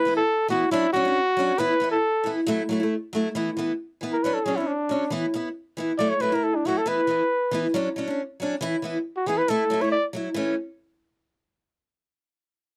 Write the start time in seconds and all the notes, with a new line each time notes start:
Already playing: B4
0.05 E3 B3 E4
0.16 A4
0.48 E3 B3 E4 F#4
0.71 F#3 C#4 D4 E4
0.93 F#3 C#4 D4 F#4
1.05 C#4 D4
1.37 F#3 C#4 D4
1.58 E3 B3 E4 B4
1.80 E3 B3 E4
1.91 A4
2.24 E3 B3 E4
2.47 F#3 A3 E4
2.69 F#3 A3 E4
2.80 A3 E4
3.13 F#3 A3 E4
3.35 E3 B3 E4
3.57 E3 B3 E4
4.01 E3 B3 E4
4.13 A#4
4.23 F#3 C#4 D4 B4
4.34 A4
4.45 F#3 C#4 D4 G#4
4.56 C#4 D4 E4
4.67 D4
4.89 F#3 C#4 D4
5.10 E3 B3 E4
5.34 B3 E4, muted steel-string acoustic guitar stroke
5.77 E3 B3 E4
5.98 F#3 A3 E4 D5
6.10 C#5
6.20 F#3 A3 E4 B4
6.32 E4 A#4, muted steel-string acoustic guitar stroke
6.43 A4
6.56 D4
6.65 F#3 A3 E4 F#4
6.78 A4
6.86 E3 B3 E4 B4
7.07 E3 B3 E4
7.51 E3 B3 E4
7.74 F#3 C#4 D4
7.96 F#3 C#4 D4
8.07 C#4 D4
8.40 F#3 C#4 D4
8.61 E3 E4, muted steel-string acoustic guitar stroke
8.82 E3 B3 E4
9.16 F#4
9.26 E3 B3 E4 G#4
9.38 B4
9.48 A3 E4 A4, muted steel-string acoustic guitar stroke
9.70 F#3 A3 E4
9.81 A3 E4 C#5
9.92 D5
10.13 F#3 E4, muted steel-string acoustic guitar stroke
10.34 E3 A3 C#4